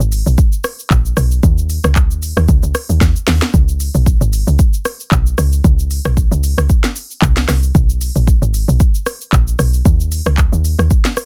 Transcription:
0.00 G#1, shaker
0.12 open hi-hat, shaker
0.26 B1, shaker
0.38 kick, shaker
0.52 shaker
0.64 cross-stick, open hi-hat, shaker
0.79 shaker
0.90 A#1, kick, clap, shaker
1.05 shaker
1.17 B1, cross-stick, open hi-hat, shaker
1.31 shaker
1.43 D#2, kick, shaker
1.58 shaker
1.70 open hi-hat, shaker
1.84 C#2, cross-stick, shaker
1.96 kick, clap, shaker
2.10 D#2, shaker
2.23 open hi-hat, shaker
2.37 D#2, cross-stick, shaker
2.48 C#2, kick, shaker
2.63 C#2, shaker
2.75 cross-stick, open hi-hat, shaker
2.89 D#2, shaker
3.01 D#2, kick, snare, shaker
3.16 shaker
3.27 D#2, snare, open hi-hat, shaker
3.42 snare, shaker
3.54 C#2, kick, shaker
3.68 shaker
3.80 open hi-hat, shaker
3.94 B1, shaker
4.06 kick, shaker
4.21 G#1, shaker
4.33 open hi-hat, shaker
4.47 C#2, shaker
4.59 kick, shaker
4.73 shaker
4.85 cross-stick, open hi-hat, shaker
5.00 shaker
5.12 B1, kick, clap, shaker
5.27 shaker
5.38 C#2, cross-stick, open hi-hat, shaker
5.52 shaker
5.64 C#2, kick, shaker
5.79 shaker
5.91 open hi-hat, shaker
6.05 B1, cross-stick, shaker
6.17 kick, shaker
6.31 C#2, shaker
6.44 open hi-hat, shaker
6.58 C#2, cross-stick, shaker
6.69 kick, shaker
6.84 snare, shaker
6.96 open hi-hat, shaker
7.11 shaker
7.22 C2, kick, clap, shaker
7.37 snare, shaker
7.48 C2, cross-stick, snare, open hi-hat, shaker
7.63 shaker
7.75 B1, kick, shaker
7.90 shaker
8.01 open hi-hat, shaker
8.15 A#1, shaker
8.27 kick, shaker
8.42 G#1, shaker
8.54 open hi-hat, shaker
8.68 B1, shaker
8.80 kick, shaker
8.94 shaker
9.06 cross-stick, open hi-hat, shaker
9.21 shaker
9.33 A#1, kick, clap, shaker
9.48 shaker
9.59 B1, cross-stick, open hi-hat, shaker
9.73 shaker
9.85 D#2, kick, shaker
10.00 shaker
10.12 open hi-hat, shaker
10.26 C#2, cross-stick, shaker
10.38 kick, clap, shaker
10.52 D#2, shaker
10.65 open hi-hat, shaker
10.79 D#2, cross-stick, shaker
10.90 kick, shaker
11.05 snare, shaker
11.17 cross-stick, open hi-hat, shaker

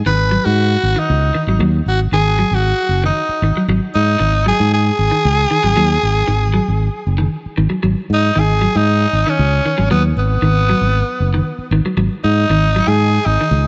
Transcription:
0.06 G#1 D#3 B4
0.31 F#3
0.45 G#2 F#4
0.83 G#1
0.96 D#3 D#4
1.10 C#2
1.35 D#3
1.47 G#1 F#3
1.59 D#2 F#3
1.86 G#1 F#4
2.12 G#1 D#3 G#4
2.39 F#3
2.51 G#1 F#4
2.89 F#1
3.04 D#3 D#4
3.29 muted fingered electric bass stroke
3.42 G#1 D#3
3.56 F#3, muted fingered electric bass stroke
3.68 G#1 F#3
3.95 G#2 D#4
4.20 G#1 D#3
4.46 F#3 G#4
4.60 G#2
4.73 G#4
4.99 G#1
5.11 D#3
5.25 C#2
5.51 D#3
5.63 G#1 F#3
5.76 D#2 F#3
6.03 G#1
6.28 G#1 D#3
6.54 F#3
6.68 G#1
7.07 F#1
7.18 D#3
7.46 muted fingered electric bass stroke
7.58 G#1 D#3
7.70 F#3, muted fingered electric bass stroke
7.83 G#1 F#3
8.10 G#2 D#4
8.36 G#1 D#3 G#4
8.62 F#3
8.76 G#2 D#4
9.13 G#1
9.27 D#3 C#4
9.39 C#2
9.66 D#3
9.78 G#1 F#3
9.91 D#2 F#3 B3
10.16 G#1 B3
10.42 G#1 D#3
10.69 F#3
10.81 G#1
11.20 F#1
11.34 D#3
11.58 muted fingered electric bass stroke
11.71 G#1 D#3
11.85 F#3, muted fingered electric bass stroke
11.97 G#1 F#3
12.24 G#2 D#4
12.50 G#1 D#3
12.76 F#3
12.87 G#2 G#4
13.26 G#1 D#4
13.41 D#3
13.51 C#2

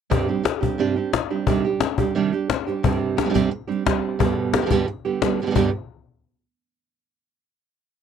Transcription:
0.10 G2 C3 G3 C4 D4 G4, cajon bass
0.28 G3 C4 D4 G4
0.43 muted nylon-string guitar stroke, cajon slap
0.61 G3 C4 D4 G4, cajon bass
0.78 G2 C3 G3 C4 D4 G4
0.96 G3 C4 D4 G4
1.13 muted nylon-string guitar stroke, cajon slap
1.30 G3 C4 D4 G4
1.47 C3 D#3 G3 D4 G4, cajon bass
1.65 G3 D4 G4
1.81 muted nylon-string guitar stroke, cajon slap
1.98 G3 D4 G4, cajon bass
2.15 C3 D#3 G3 D4 G4
2.33 G3 D4 G4, cajon slap
2.50 muted nylon-string guitar stroke, cajon slap
2.67 G3 D4 G4, cajon slap
2.83 G2 C3 G3 C4 D4 G4, cajon bass
3.17 G3 C4 D4 G4, cajon slap
3.25 C3 G3 C4 D4 G4
3.30 C3 G3 C4 D4 G4
3.34 G2 C3 G3 C4 D4 G4, cajon bass
3.51 muted nylon-string guitar stroke
3.67 G3 C4 D4 G4, cajon slap
3.85 G3 C4 D4 G4, cajon bass, cajon slap
4.19 G2 B2 D3 G3 B3 G4, cajon bass
4.53 D3 G3 B3 G4, cajon slap
4.62 B2 D3 G3 B3 G4
4.66 B2 D3 G3 B3 G4
4.70 G2 B2 D3 G3 B3 G4, cajon bass
4.88 muted nylon-string guitar stroke, cajon slap
5.05 D3 G3 B3 G4
5.22 D3 G3 B3 G4, cajon slap
5.39 B2 D3 G3 B3 G4, cajon slap
5.46 B2 D3 G3 B3 G4
5.50 B2 D3 G3 B3 G4
5.55 G2 B2 D3 G3 B3 G4, cajon bass

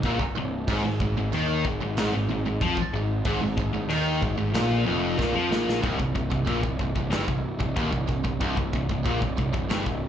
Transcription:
0.03 A#1 A#2, kick, crash
0.19 muted picked electric bass stroke, muted distorted electric guitar stroke, kick
0.35 C1 C2
0.68 G#1 G#2, kick, crash
0.84 G#1 G#2
1.00 G#1 G#2, kick
1.16 G#1 G#2
1.32 D#2 D#3, crash
1.65 G#1 G#2, kick
1.81 G#1 G#2
1.97 G#1 G#2, snare, crash
2.12 G#1 G#2
2.29 G#1 G#2
2.44 G#1 G#2
2.61 F2 F3, kick, crash
2.77 muted picked electric bass stroke, muted distorted electric guitar stroke, kick
2.93 G#1 G#2
3.25 G#1 G#2, kick, crash
3.40 G#1 G#2
3.57 G#1 G#2, kick
3.73 G#1 G#2
3.88 D#2 D#3, crash
4.21 G#1 G#2, kick
4.37 G#1 G#2
4.53 A#1 A#2, snare, crash
4.86 F1 F2
5.18 A#1 A#2, kick, snare
5.33 F2 F3
5.49 A#1 A#2, snare
5.69 snare
5.82 C1 C2, kick, china
6.00 C1 C2, kick
6.15 C1 C2, kick
6.32 C1 C2, kick
6.47 A#1 A#2, kick, china
6.62 C1 C2, kick
6.79 C1 C2, kick
6.95 C1 C2, kick
7.10 G1 G2, snare, china
7.28 C1 C2, kick
7.60 C1 C2, kick
7.76 D#1 D#2, kick, china
7.92 C1 C2, kick
8.08 C1 C2, kick
8.24 C1 C2, kick
8.40 C1 C2, kick, china
8.57 C1 C2, kick
8.73 C1 C2, kick
8.89 C1 C2, kick
9.05 A#1 A#2, kick, china
9.22 C1 C2, kick
9.38 C1 C2, kick
9.53 C1 C2, kick
9.70 G1 G2, snare, china
9.86 C1 C2, kick

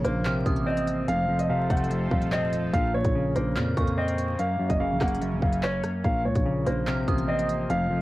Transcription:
Already playing: A#2 C#3 F3 A#3
0.04 A#1 A#3 C5, closed hi-hat
0.25 C3 F6, clap, closed hi-hat
0.46 A1 D#6, kick, closed hi-hat
0.56 closed hi-hat
0.66 C4 D#5
0.77 closed hi-hat
0.87 closed hi-hat
1.08 F1 F2 F3 F4 A4 C5 F5, closed hi-hat
1.29 F2
1.39 D#5, closed hi-hat
1.49 C3 F5
1.70 F1 A3 F#5, kick, closed hi-hat
1.77 closed hi-hat
1.84 closed hi-hat
1.91 F2, closed hi-hat
2.11 D#1 F2 F5, kick
2.22 closed hi-hat
2.32 C4 D#5, clap
2.53 closed hi-hat
2.73 A#1 A#2 C#3 A#3 F5, kick, closed hi-hat
2.94 A#2 C#5
3.04 A#1, kick, closed hi-hat
3.15 C#3
3.35 A#1 A#3 C5, closed hi-hat
3.56 F2 A#2 F6, clap, closed hi-hat
3.77 F2 A#2 C#6, kick, closed hi-hat
3.87 closed hi-hat
3.97 C4 D#5
4.08 closed hi-hat
4.18 closed hi-hat
4.39 F#2 F#3 C#4 F5, closed hi-hat
4.59 F#2
4.69 F#1 D#5, kick, closed hi-hat
4.80 C#3 F5
4.91 A#1
5.01 F#1 A#3 F#5, kick, cross-stick, clap, closed hi-hat
5.08 closed hi-hat
5.15 closed hi-hat
5.21 F#2, closed hi-hat
5.32 A#1
5.42 F#1 F#2 F5, kick
5.53 closed hi-hat
5.63 C#4 C#5, clap
5.84 cross-stick, closed hi-hat
6.04 A#1 A#2 F3 A#3 F5, kick, closed hi-hat
6.25 C#2 A#2 C#5
6.35 A#1, kick, closed hi-hat
6.46 C#3
6.66 A#1 A#3 C5, closed hi-hat
6.87 C3 F6, clap, closed hi-hat
7.08 A1 D#6, kick, closed hi-hat
7.18 closed hi-hat
7.28 C4 D#5
7.39 closed hi-hat
7.49 closed hi-hat
7.70 F1 F2 F3 F4 A4 C5 F5, closed hi-hat
7.91 F2

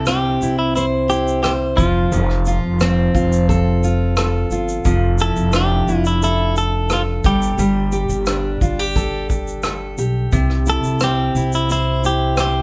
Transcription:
Already playing: C2 C3 G3 E4
0.06 C4 G4, cross-stick, shaker
0.42 C2 E4, shaker
0.59 E4
0.76 E4 C5, shaker
1.10 E4 G4, shaker
1.28 shaker
1.43 G4 C5, cross-stick, shaker
1.77 F1 F3 F4, kick, shaker
2.12 F1 F3, shaker
2.30 cross-stick
2.46 F4, shaker
2.63 F1
2.80 C4, cross-stick, shaker
3.15 F1 F4, kick, shaker
3.33 shaker
3.49 A4, kick, shaker
3.84 F4, shaker
4.17 A4, cross-stick, shaker
4.51 G1 F4, shaker
4.69 shaker
4.85 F1 F3, kick, shaker
5.19 E4 A4, shaker
5.36 F1, shaker
5.52 D4 G4, cross-stick, shaker
5.87 F1 E4, shaker
6.05 E4, shaker
6.23 E4 A4, shaker
6.56 A4, shaker
6.90 F4 A4, cross-stick, shaker
7.24 G1 G3 G4, kick, shaker
7.42 shaker
7.57 G1 G3, shaker
7.92 G4, shaker
8.09 G1, shaker
8.26 D4, cross-stick, shaker
8.61 G1 F4, kick, shaker
8.79 G4
8.96 A4, kick, shaker
9.30 G4, kick, shaker
9.48 shaker
9.63 A4, cross-stick, shaker
9.98 B1 G4, shaker
10.32 C2 C3, kick, shaker
10.50 cross-stick
10.66 E4 A4, shaker
10.83 C2, shaker
11.00 C4 G4, cross-stick, shaker
11.35 C2 E4, shaker
11.53 E4, shaker
11.70 E4 C5, shaker
12.04 E4 G4, shaker
12.37 G4 C5, cross-stick, shaker

